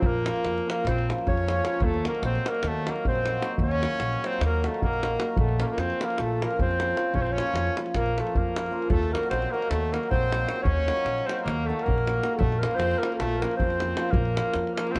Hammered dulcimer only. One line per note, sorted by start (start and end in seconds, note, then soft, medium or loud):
0.00 0.23 F3 medium
0.24 0.65 F3 medium
0.24 0.40 A#3 medium
0.24 0.40 C#4 medium
0.24 0.41 F4 medium
0.66 1.07 F3 medium
0.66 0.81 A#3 soft
0.66 0.81 C#4 medium
0.66 0.81 F4 medium
1.08 1.45 F3 medium
1.08 1.23 A#3 medium
1.08 1.23 C#4 medium
1.08 1.24 F4 medium
1.46 1.61 F3 medium
1.46 1.60 A#3 medium
1.46 1.61 C#4 soft
1.46 1.61 F4 medium
1.62 1.86 F3 medium
1.62 1.77 A#3 medium
1.62 1.77 C#4 medium
1.62 1.78 F4 medium
2.04 2.43 F#3 medium
2.04 2.18 A#3 medium
2.04 2.19 D#4 medium
2.04 2.19 F#4 medium
2.45 2.85 F#3 medium
2.45 2.60 A#3 medium
2.45 2.60 D#4 medium
2.45 2.60 F#4 medium
2.86 3.21 F#3 medium
2.86 3.01 A#3 medium
2.86 3.01 D#4 medium
2.86 3.02 F#4 medium
3.23 3.39 F#3 soft
3.23 3.38 A#3 medium
3.23 3.38 D#4 medium
3.23 3.38 F#4 medium
3.40 3.79 F#3 medium
3.40 3.55 A#3 medium
3.40 3.55 D#4 medium
3.40 3.55 F#4 medium
3.80 4.20 F#3 medium
3.80 3.95 A#3 medium
3.80 3.96 D#4 medium
3.80 3.96 F#4 medium
4.21 4.62 F#3 medium
4.21 4.37 A#3 medium
4.21 4.37 D#4 medium
4.21 4.37 F#4 medium
4.63 4.99 F#3 medium
4.63 4.78 A#3 medium
4.63 4.78 D#4 medium
4.63 4.78 F#4 medium
5.00 5.17 F#3 medium
5.00 5.15 A#3 medium
5.00 5.16 D#4 medium
5.00 5.16 F#4 medium
5.19 5.41 F#3 medium
5.19 5.33 A#3 medium
5.19 5.33 D#4 medium
5.19 5.33 F#4 medium
5.58 5.99 F3 medium
5.58 5.73 A#3 medium
5.58 5.74 C#4 medium
5.58 5.74 F4 medium
6.00 6.41 F3 medium
6.00 6.15 A#3 medium
6.00 6.15 C#4 medium
6.00 6.16 F4 medium
6.42 6.78 F3 medium
6.42 6.56 A#3 medium
6.42 6.56 C#4 medium
6.42 6.56 F4 medium
6.79 6.94 F3 medium
6.79 6.93 A#3 medium
6.79 6.93 C#4 medium
6.79 6.93 F4 medium
6.95 7.35 F3 medium
6.95 7.10 A#3 medium
6.95 7.10 C#4 medium
6.95 7.10 F4 medium
7.36 7.76 F3 medium
7.36 7.50 A#3 medium
7.36 7.51 C#4 soft
7.36 7.51 F4 medium
7.77 8.16 F3 medium
7.77 7.91 A#3 medium
7.77 7.91 C#4 medium
7.77 7.92 F4 medium
8.17 8.54 F3 medium
8.17 8.32 A#3 medium
8.17 8.33 C#4 medium
8.17 8.33 F4 medium
8.55 8.70 F3 soft
8.55 8.69 A#3 soft
8.55 8.69 C#4 medium
8.55 8.70 F4 medium
8.71 8.94 F3 medium
8.71 8.85 A#3 medium
8.71 8.86 C#4 medium
8.71 8.86 F4 medium
9.11 9.52 F#3 medium
9.11 9.26 A#3 medium
9.11 9.27 D#4 medium
9.11 9.27 F#4 medium
9.53 9.91 F#3 medium
9.53 9.67 A#3 medium
9.53 9.67 D#4 medium
9.53 9.68 F#4 medium
9.92 10.29 F#3 medium
9.92 10.07 A#3 medium
9.92 10.07 D#4 medium
9.92 10.08 F#4 medium
10.30 10.46 F#3 medium
10.30 10.44 A#3 medium
10.30 10.45 D#4 medium
10.30 10.45 F#4 medium
10.47 10.85 F#3 medium
10.47 10.61 A#3 medium
10.47 10.61 D#4 medium
10.47 10.62 F#4 medium
10.86 11.25 F#3 medium
10.86 11.01 A#3 medium
10.86 11.01 D#4 medium
10.86 11.02 F#4 medium
11.26 11.68 F#3 medium
11.26 11.42 A#3 medium
11.26 11.42 D#4 soft
11.26 11.42 F#4 medium
11.69 12.04 F#3 medium
11.69 11.83 A#3 medium
11.69 11.83 D#4 medium
11.69 11.83 F#4 medium
12.06 12.22 F#3 medium
12.06 12.20 A#3 medium
12.06 12.20 D#4 medium
12.06 12.20 F#4 medium
12.23 12.44 F#3 medium
12.23 12.36 A#3 medium
12.23 12.37 D#4 medium
12.23 12.36 F#4 medium
12.62 13.01 F3 medium
12.62 12.76 A#3 medium
12.62 12.76 C#4 medium
12.62 12.77 F4 medium
13.02 13.41 F3 medium
13.02 13.16 A#3 medium
13.02 13.17 C#4 medium
13.02 13.17 F4 medium
13.42 13.79 F3 medium
13.42 13.57 A#3 medium
13.42 13.57 C#4 medium
13.42 13.57 F4 medium
13.80 13.95 F3 medium
13.80 13.94 A#3 medium
13.80 13.94 C#4 medium
13.80 13.95 F4 medium
13.96 14.34 F3 medium
13.96 14.10 A#3 medium
13.96 14.11 C#4 medium
13.96 14.11 F4 medium
14.35 14.76 F3 medium
14.35 14.50 A#3 medium
14.35 14.50 C#4 medium
14.35 14.50 F4 medium
14.77 14.99 F3 medium
14.77 14.91 A#3 medium
14.77 14.91 C#4 medium
14.77 14.91 F4 medium